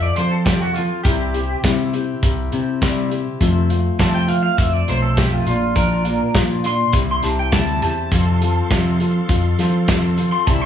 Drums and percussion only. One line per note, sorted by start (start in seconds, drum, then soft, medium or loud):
0.16 closed hi-hat medium
0.46 kick loud
0.46 snare loud
0.46 closed hi-hat loud
0.76 closed hi-hat medium
1.05 kick loud
1.05 closed hi-hat medium
1.34 closed hi-hat medium
1.64 kick medium
1.64 snare medium
1.64 closed hi-hat medium
1.93 closed hi-hat medium
2.23 kick loud
2.23 closed hi-hat medium
2.52 closed hi-hat medium
2.82 kick loud
2.82 snare loud
2.82 closed hi-hat medium
3.11 closed hi-hat medium
3.41 kick loud
3.41 closed hi-hat medium
3.70 closed hi-hat medium
3.99 kick loud
3.99 snare loud
3.99 closed hi-hat medium
4.28 closed hi-hat medium
4.58 kick loud
4.58 closed hi-hat medium
4.88 closed hi-hat medium
5.17 kick loud
5.17 snare loud
5.17 closed hi-hat medium
5.46 closed hi-hat medium
5.76 kick loud
5.76 closed hi-hat medium
6.05 closed hi-hat medium
6.34 kick loud
6.34 snare loud
6.34 closed hi-hat medium
6.64 closed hi-hat medium
6.93 kick medium
6.93 closed hi-hat medium
7.23 snare soft
7.23 closed hi-hat medium
7.52 kick loud
7.52 snare loud
7.52 closed hi-hat medium
7.82 closed hi-hat medium
8.12 kick loud
8.12 closed hi-hat medium
8.42 closed hi-hat medium
8.71 kick loud
8.71 snare loud
8.71 closed hi-hat medium
9.00 closed hi-hat medium
9.29 kick loud
9.29 closed hi-hat medium
9.59 snare soft
9.59 closed hi-hat medium
9.88 kick loud
9.88 snare loud
9.88 closed hi-hat medium
10.18 closed hi-hat medium
10.47 kick loud
10.47 closed hi-hat medium